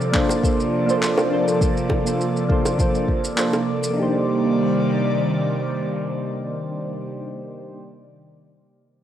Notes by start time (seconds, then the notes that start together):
Already playing: C3 F3 A#3 A4 D5
0.01 shaker
0.12 A#3 D4 F4 A4, kick, clap
0.16 C5
0.29 high bongo, shaker
0.41 A#3 D4 F4 A4 C5, kick, shaker
0.60 shaker
0.86 A#3 D4 F4 A4 C5, shaker
1.02 clap, shaker
1.18 high bongo, shaker
1.30 A#3 D4 F4 A4 C5
1.48 shaker
1.60 A#3 D4 F4 A4 C5, kick, shaker
1.77 shaker
1.90 kick, high bongo
2.04 A#3 D4 F4 A4 C5, shaker
2.21 shaker
2.37 shaker
2.48 A#3 D4 F4 A4 C5, kick
2.65 high bongo, shaker
2.78 A#3 D4 F4 A4 C5, kick, shaker
2.95 shaker
3.08 kick
3.24 shaker
3.36 A#3 D4 F4 A4 C5, clap, shaker
3.53 high bongo, shaker
3.83 shaker
3.90 A#3 D4
3.96 C3 D#3 G3 A#3 D#4 G4 D5
4.02 C5